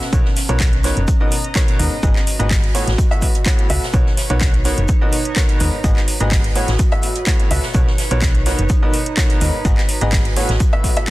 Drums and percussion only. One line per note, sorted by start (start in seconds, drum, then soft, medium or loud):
0.01 snare medium
0.13 kick loud
0.13 closed hi-hat medium
0.13 shaker medium
0.25 snare soft
0.36 snare soft
0.36 open hi-hat loud
0.36 shaker medium
0.49 closed hi-hat soft
0.60 kick loud
0.60 snare loud
0.60 clap loud
0.60 closed hi-hat medium
0.60 shaker medium
0.73 closed hi-hat medium
0.84 snare medium
0.84 open hi-hat loud
0.84 shaker medium
0.97 closed hi-hat soft
1.08 kick loud
1.08 closed hi-hat medium
1.08 shaker medium
1.32 open hi-hat loud
1.32 shaker medium
1.45 closed hi-hat soft
1.56 kick loud
1.56 snare loud
1.56 clap loud
1.56 closed hi-hat medium
1.56 shaker medium
1.68 closed hi-hat soft
1.68 closed hi-hat medium
1.79 open hi-hat loud
1.79 shaker medium
2.03 kick loud
2.03 closed hi-hat medium
2.03 shaker medium
2.16 snare soft
2.16 clap soft
2.27 open hi-hat loud
2.27 shaker medium
2.40 closed hi-hat soft
2.51 kick loud
2.51 snare loud
2.51 clap loud
2.51 closed hi-hat medium
2.51 open hi-hat medium
2.64 closed hi-hat medium
2.75 open hi-hat loud
2.75 shaker medium
2.87 snare medium
2.87 closed hi-hat soft
2.98 kick loud
2.98 closed hi-hat medium
2.98 shaker medium
3.11 closed hi-hat soft
3.21 kick medium
3.21 open hi-hat loud
3.21 shaker medium
3.35 closed hi-hat soft
3.46 kick loud
3.46 snare loud
3.46 clap loud
3.46 closed hi-hat medium
3.46 shaker medium
3.59 closed hi-hat medium
3.69 open hi-hat loud
3.69 shaker medium
3.83 snare medium
3.94 kick loud
3.94 closed hi-hat medium
3.94 shaker medium
4.06 snare soft
4.17 snare medium
4.17 open hi-hat loud
4.17 shaker medium
4.30 closed hi-hat soft
4.41 kick loud
4.41 snare loud
4.41 clap loud
4.41 closed hi-hat medium
4.41 shaker medium
4.54 closed hi-hat medium
4.65 snare medium
4.65 open hi-hat loud
4.65 shaker medium
4.78 closed hi-hat soft
4.88 kick loud
4.88 closed hi-hat medium
4.88 shaker medium
5.13 open hi-hat loud
5.13 shaker medium
5.25 closed hi-hat medium
5.36 kick loud
5.36 snare loud
5.36 clap loud
5.36 closed hi-hat medium
5.36 shaker medium
5.49 closed hi-hat soft
5.49 closed hi-hat medium
5.60 open hi-hat loud
5.60 shaker medium
5.84 kick loud
5.84 closed hi-hat medium
5.84 shaker medium
5.96 snare soft
5.96 clap soft
6.08 open hi-hat loud
6.08 shaker medium
6.20 closed hi-hat medium
6.31 kick loud
6.31 snare loud
6.31 clap loud
6.31 closed hi-hat medium
6.31 open hi-hat medium
6.44 closed hi-hat medium
6.55 open hi-hat medium
6.55 shaker medium
6.68 snare medium
6.68 closed hi-hat soft
6.79 kick loud
6.79 closed hi-hat medium
6.79 shaker medium
6.92 closed hi-hat soft
7.02 open hi-hat loud
7.02 shaker medium
7.16 closed hi-hat medium
7.16 closed hi-hat soft
7.27 kick loud
7.27 snare loud
7.27 clap loud
7.27 closed hi-hat medium
7.27 shaker medium
7.40 closed hi-hat medium
7.51 open hi-hat loud
7.51 shaker medium
7.63 snare medium
7.74 kick loud
7.74 closed hi-hat medium
7.74 shaker medium
7.87 snare soft
7.98 snare medium
7.98 open hi-hat loud
7.98 shaker medium
8.11 closed hi-hat medium
8.22 kick loud
8.22 snare loud
8.22 clap loud
8.22 closed hi-hat medium
8.22 shaker medium
8.35 closed hi-hat medium
8.46 snare medium
8.46 open hi-hat loud
8.46 shaker medium
8.59 closed hi-hat medium
8.69 kick loud
8.69 closed hi-hat medium
8.69 shaker medium
8.93 open hi-hat loud
8.93 shaker medium
9.06 closed hi-hat medium
9.17 kick loud
9.17 snare loud
9.17 clap loud
9.17 closed hi-hat medium
9.17 shaker medium
9.30 closed hi-hat medium
9.30 closed hi-hat soft
9.41 open hi-hat loud
9.41 shaker medium
9.65 kick loud
9.65 closed hi-hat medium
9.65 shaker medium
9.77 snare soft
9.77 clap soft
9.89 open hi-hat loud
9.89 shaker medium
10.01 closed hi-hat medium
10.12 kick loud
10.12 snare loud
10.12 clap loud
10.12 closed hi-hat medium
10.12 open hi-hat medium
10.25 closed hi-hat medium
10.36 open hi-hat medium
10.36 shaker medium
10.49 snare medium
10.49 closed hi-hat medium
10.60 kick loud
10.60 closed hi-hat medium
10.60 shaker medium
10.73 closed hi-hat soft
10.84 kick medium
10.84 open hi-hat loud
10.84 shaker medium
10.97 closed hi-hat medium
10.97 closed hi-hat soft